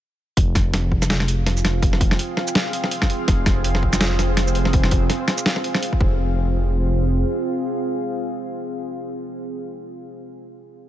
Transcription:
0.37 1.63 F1 loud
0.37 6.00 C4 medium
0.37 kick loud
0.37 closed hi-hat medium
0.46 6.01 F4 medium
0.46 6.01 G#4 medium
0.55 6.01 F5 medium
0.55 kick loud
0.55 snare medium
0.55 closed hi-hat medium
0.74 snare medium
0.74 closed hi-hat medium
0.92 kick medium
1.02 snare medium
1.02 shaker medium
1.10 snare loud
1.10 closed hi-hat medium
1.20 snare medium
1.28 closed hi-hat medium
1.28 shaker soft
1.46 snare medium
1.46 closed hi-hat medium
1.57 shaker soft
1.65 2.00 F1 medium
1.65 snare medium
1.65 closed hi-hat medium
1.82 kick loud
1.82 closed hi-hat medium
1.93 snare medium
2.01 2.18 F1 loud
2.01 kick loud
2.01 closed hi-hat medium
2.11 snare medium
2.19 closed hi-hat medium
2.37 snare medium
2.47 shaker medium
2.55 snare loud
2.55 snare medium
2.55 closed hi-hat medium
2.73 closed hi-hat medium
2.84 snare medium
2.91 closed hi-hat medium
3.02 kick medium
3.02 snare medium
3.10 closed hi-hat medium
3.28 4.54 F1 loud
3.28 6.20 C4 medium
3.28 6.20 C5 medium
3.28 kick loud
3.28 snare medium
3.28 closed hi-hat medium
3.46 kick loud
3.46 snare medium
3.46 closed hi-hat medium
3.64 closed hi-hat medium
3.75 snare medium
3.83 kick medium
3.93 snare medium
3.93 shaker medium
4.01 snare loud
4.01 closed hi-hat medium
4.19 snare medium
4.19 closed hi-hat medium
4.19 shaker soft
4.37 snare medium
4.37 closed hi-hat medium
4.47 shaker soft
4.55 4.91 F1 medium
4.55 closed hi-hat medium
4.65 snare medium
4.73 kick loud
4.73 closed hi-hat medium
4.84 snare medium
4.91 5.09 F1 loud
4.91 kick loud
4.91 closed hi-hat medium
5.10 snare medium
5.10 closed hi-hat medium
5.28 snare medium
5.28 closed hi-hat soft
5.38 shaker medium
5.46 snare loud
5.46 closed hi-hat medium
5.56 snare soft
5.64 closed hi-hat medium
5.75 snare medium
5.83 closed hi-hat medium
5.93 kick medium
6.00 7.24 F1 loud
6.00 9.86 C4 medium
6.00 kick loud
6.08 9.86 F4 medium
6.32 9.86 G#4 medium
6.32 9.86 F5 medium

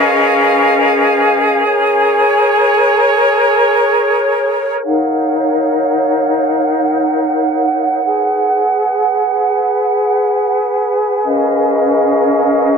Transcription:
0.00 1.61 C#4 medium
0.00 4.57 G#4 medium
0.00 1.61 A#4 medium
0.00 1.38 B4 medium
0.00 1.61 D#5 medium
0.00 1.61 F5 medium
1.64 4.81 A#4 medium
1.64 4.81 C#5 medium
4.84 8.01 D#4 medium
4.84 8.01 A#4 medium
4.84 8.01 C#5 medium
4.84 8.01 F5 medium
4.84 10.93 F#5 medium
8.04 12.78 G#4 medium
8.04 12.78 B4 medium
11.24 12.78 C#4 medium
11.24 12.78 A#4 medium
11.24 12.78 D#5 medium
11.24 12.78 F5 medium

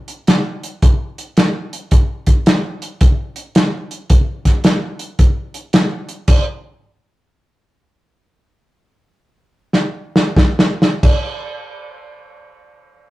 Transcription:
0.08 closed hi-hat medium
0.27 snare loud
0.27 closed hi-hat medium
0.64 closed hi-hat medium
0.82 kick loud
0.82 closed hi-hat medium
1.18 closed hi-hat medium
1.37 snare loud
1.37 closed hi-hat medium
1.73 closed hi-hat medium
1.91 kick loud
1.91 closed hi-hat medium
2.27 kick medium
2.27 closed hi-hat medium
2.46 snare loud
2.46 closed hi-hat medium
2.82 closed hi-hat medium
3.01 kick loud
3.01 closed hi-hat medium
3.36 closed hi-hat medium
3.55 snare loud
3.55 closed hi-hat medium
3.91 closed hi-hat medium
4.10 kick loud
4.10 closed hi-hat medium
4.45 kick medium
4.45 snare soft
4.45 closed hi-hat medium
4.64 snare loud
4.64 closed hi-hat medium
4.99 closed hi-hat medium
5.19 kick loud
5.19 closed hi-hat medium
5.54 closed hi-hat medium
5.73 snare loud
5.73 closed hi-hat medium
6.09 closed hi-hat medium
6.28 kick loud
6.28 closed hi-hat medium
6.28 crash medium
9.73 snare medium
10.16 snare medium
10.36 kick medium
10.36 snare medium
10.59 snare medium
10.82 snare medium
11.03 kick loud
11.03 crash medium

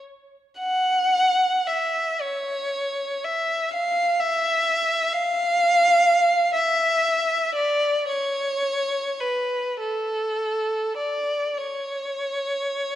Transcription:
0.59 1.64 F#5 medium
1.67 2.22 E5 medium
2.21 3.25 C#5 medium
3.24 3.74 E5 medium
3.73 4.21 F5 medium
4.20 5.13 E5 medium
5.14 6.55 F5 medium
6.54 7.53 E5 medium
7.55 8.08 D5 medium
8.08 9.19 C#5 medium
9.20 9.80 B4 medium
9.80 10.97 A4 medium
10.97 11.55 D5 medium
11.58 12.95 C#5 medium

